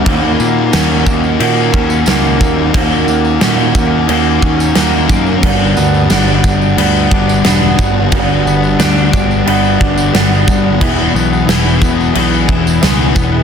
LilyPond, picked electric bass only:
\new Staff \with { instrumentName = "Picked electric bass" } { \clef bass \time 4/4 \key dis \phrygian \tempo 4 = 89 dis,8 ais,8 dis,8 r8 ais,8 dis,8 cis,8 dis,8 | dis,8 dis,8 ais,8 dis,8 dis,8 dis,8 dis,8 fis,8 | g,,8 d,8 g,,8 g,,8 d,8 g,,8 e,,8 g,,8 | r8 g,,8 d,8 g,,8 g,,8 g,,8 g,,8 g,,8 |
r8 b,,8 e,,8 e,,8 b,,8 e,,8 cis,8 e,,8 | }